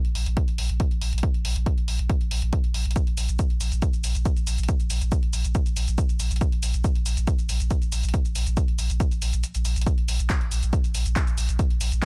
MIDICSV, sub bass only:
0, 0, Header, 1, 2, 480
1, 0, Start_track
1, 0, Tempo, 431655
1, 1371, Time_signature, 4, 2, 24, 8
1, 13400, End_track
2, 0, Start_track
2, 0, Title_t, "Sub bass"
2, 0, Program_c, 0, 38
2, 53, Note_on_c, 0, 34, 77
2, 163, Note_off_c, 0, 34, 0
2, 170, Note_on_c, 0, 34, 102
2, 287, Note_off_c, 0, 34, 0
2, 294, Note_on_c, 0, 34, 82
2, 408, Note_off_c, 0, 34, 0
2, 534, Note_on_c, 0, 34, 79
2, 644, Note_off_c, 0, 34, 0
2, 651, Note_on_c, 0, 34, 99
2, 767, Note_off_c, 0, 34, 0
2, 773, Note_on_c, 0, 34, 82
2, 888, Note_off_c, 0, 34, 0
2, 1014, Note_on_c, 0, 34, 76
2, 1124, Note_off_c, 0, 34, 0
2, 1131, Note_on_c, 0, 34, 97
2, 1247, Note_off_c, 0, 34, 0
2, 1253, Note_on_c, 0, 34, 78
2, 1368, Note_off_c, 0, 34, 0
2, 1493, Note_on_c, 0, 34, 76
2, 1603, Note_off_c, 0, 34, 0
2, 1609, Note_on_c, 0, 34, 101
2, 1727, Note_off_c, 0, 34, 0
2, 1733, Note_on_c, 0, 34, 80
2, 1848, Note_off_c, 0, 34, 0
2, 1974, Note_on_c, 0, 34, 75
2, 2083, Note_off_c, 0, 34, 0
2, 2090, Note_on_c, 0, 34, 101
2, 2208, Note_off_c, 0, 34, 0
2, 2215, Note_on_c, 0, 34, 78
2, 2328, Note_off_c, 0, 34, 0
2, 2455, Note_on_c, 0, 34, 77
2, 2564, Note_off_c, 0, 34, 0
2, 2571, Note_on_c, 0, 34, 99
2, 2687, Note_off_c, 0, 34, 0
2, 2693, Note_on_c, 0, 34, 83
2, 2808, Note_off_c, 0, 34, 0
2, 2934, Note_on_c, 0, 34, 75
2, 3043, Note_off_c, 0, 34, 0
2, 3050, Note_on_c, 0, 34, 95
2, 3168, Note_off_c, 0, 34, 0
2, 3175, Note_on_c, 0, 34, 81
2, 3289, Note_off_c, 0, 34, 0
2, 3414, Note_on_c, 0, 34, 76
2, 3524, Note_off_c, 0, 34, 0
2, 3531, Note_on_c, 0, 34, 99
2, 3648, Note_off_c, 0, 34, 0
2, 3655, Note_on_c, 0, 34, 82
2, 3768, Note_off_c, 0, 34, 0
2, 3894, Note_on_c, 0, 34, 75
2, 4005, Note_off_c, 0, 34, 0
2, 4011, Note_on_c, 0, 34, 99
2, 4129, Note_off_c, 0, 34, 0
2, 4136, Note_on_c, 0, 34, 83
2, 4249, Note_off_c, 0, 34, 0
2, 4376, Note_on_c, 0, 34, 77
2, 4484, Note_off_c, 0, 34, 0
2, 4491, Note_on_c, 0, 34, 100
2, 4609, Note_off_c, 0, 34, 0
2, 4616, Note_on_c, 0, 34, 84
2, 4729, Note_off_c, 0, 34, 0
2, 4856, Note_on_c, 0, 34, 78
2, 4965, Note_off_c, 0, 34, 0
2, 4972, Note_on_c, 0, 34, 102
2, 5089, Note_off_c, 0, 34, 0
2, 5096, Note_on_c, 0, 34, 82
2, 5209, Note_off_c, 0, 34, 0
2, 5335, Note_on_c, 0, 34, 78
2, 5445, Note_off_c, 0, 34, 0
2, 5451, Note_on_c, 0, 34, 100
2, 5570, Note_off_c, 0, 34, 0
2, 5576, Note_on_c, 0, 34, 82
2, 5689, Note_off_c, 0, 34, 0
2, 5815, Note_on_c, 0, 34, 75
2, 5925, Note_off_c, 0, 34, 0
2, 5932, Note_on_c, 0, 34, 103
2, 6050, Note_off_c, 0, 34, 0
2, 6056, Note_on_c, 0, 34, 80
2, 6169, Note_off_c, 0, 34, 0
2, 6295, Note_on_c, 0, 34, 80
2, 6405, Note_off_c, 0, 34, 0
2, 6411, Note_on_c, 0, 34, 97
2, 6529, Note_off_c, 0, 34, 0
2, 6535, Note_on_c, 0, 34, 84
2, 6649, Note_off_c, 0, 34, 0
2, 6775, Note_on_c, 0, 34, 78
2, 6885, Note_off_c, 0, 34, 0
2, 6892, Note_on_c, 0, 34, 97
2, 7008, Note_off_c, 0, 34, 0
2, 7015, Note_on_c, 0, 34, 82
2, 7128, Note_off_c, 0, 34, 0
2, 7254, Note_on_c, 0, 34, 77
2, 7363, Note_off_c, 0, 34, 0
2, 7369, Note_on_c, 0, 34, 100
2, 7488, Note_off_c, 0, 34, 0
2, 7495, Note_on_c, 0, 34, 85
2, 7608, Note_off_c, 0, 34, 0
2, 7734, Note_on_c, 0, 34, 78
2, 7842, Note_off_c, 0, 34, 0
2, 7849, Note_on_c, 0, 34, 103
2, 7967, Note_off_c, 0, 34, 0
2, 7974, Note_on_c, 0, 34, 81
2, 8088, Note_off_c, 0, 34, 0
2, 8215, Note_on_c, 0, 34, 77
2, 8325, Note_off_c, 0, 34, 0
2, 8332, Note_on_c, 0, 34, 102
2, 8449, Note_off_c, 0, 34, 0
2, 8456, Note_on_c, 0, 34, 86
2, 8569, Note_off_c, 0, 34, 0
2, 8695, Note_on_c, 0, 34, 79
2, 8805, Note_off_c, 0, 34, 0
2, 8811, Note_on_c, 0, 34, 97
2, 8929, Note_off_c, 0, 34, 0
2, 8935, Note_on_c, 0, 34, 84
2, 9049, Note_off_c, 0, 34, 0
2, 9175, Note_on_c, 0, 34, 78
2, 9284, Note_off_c, 0, 34, 0
2, 9290, Note_on_c, 0, 34, 99
2, 9407, Note_off_c, 0, 34, 0
2, 9414, Note_on_c, 0, 34, 83
2, 9528, Note_off_c, 0, 34, 0
2, 9653, Note_on_c, 0, 34, 73
2, 9764, Note_off_c, 0, 34, 0
2, 9771, Note_on_c, 0, 34, 100
2, 9888, Note_off_c, 0, 34, 0
2, 9894, Note_on_c, 0, 34, 83
2, 10008, Note_off_c, 0, 34, 0
2, 10135, Note_on_c, 0, 34, 78
2, 10244, Note_off_c, 0, 34, 0
2, 10251, Note_on_c, 0, 34, 101
2, 10368, Note_off_c, 0, 34, 0
2, 10375, Note_on_c, 0, 34, 85
2, 10488, Note_off_c, 0, 34, 0
2, 10616, Note_on_c, 0, 34, 78
2, 10724, Note_off_c, 0, 34, 0
2, 10731, Note_on_c, 0, 34, 99
2, 10848, Note_off_c, 0, 34, 0
2, 10854, Note_on_c, 0, 34, 84
2, 10968, Note_off_c, 0, 34, 0
2, 11093, Note_on_c, 0, 34, 79
2, 11203, Note_off_c, 0, 34, 0
2, 11210, Note_on_c, 0, 34, 105
2, 11328, Note_off_c, 0, 34, 0
2, 11334, Note_on_c, 0, 34, 82
2, 11448, Note_off_c, 0, 34, 0
2, 11576, Note_on_c, 0, 34, 77
2, 11685, Note_off_c, 0, 34, 0
2, 11692, Note_on_c, 0, 34, 102
2, 11809, Note_off_c, 0, 34, 0
2, 11815, Note_on_c, 0, 34, 80
2, 11929, Note_off_c, 0, 34, 0
2, 12056, Note_on_c, 0, 34, 80
2, 12165, Note_off_c, 0, 34, 0
2, 12171, Note_on_c, 0, 34, 97
2, 12287, Note_off_c, 0, 34, 0
2, 12294, Note_on_c, 0, 34, 87
2, 12408, Note_off_c, 0, 34, 0
2, 12533, Note_on_c, 0, 34, 80
2, 12643, Note_off_c, 0, 34, 0
2, 12650, Note_on_c, 0, 34, 103
2, 12767, Note_off_c, 0, 34, 0
2, 12774, Note_on_c, 0, 34, 82
2, 12888, Note_off_c, 0, 34, 0
2, 13013, Note_on_c, 0, 34, 81
2, 13123, Note_off_c, 0, 34, 0
2, 13130, Note_on_c, 0, 34, 104
2, 13248, Note_off_c, 0, 34, 0
2, 13255, Note_on_c, 0, 34, 85
2, 13369, Note_off_c, 0, 34, 0
2, 13400, End_track
0, 0, End_of_file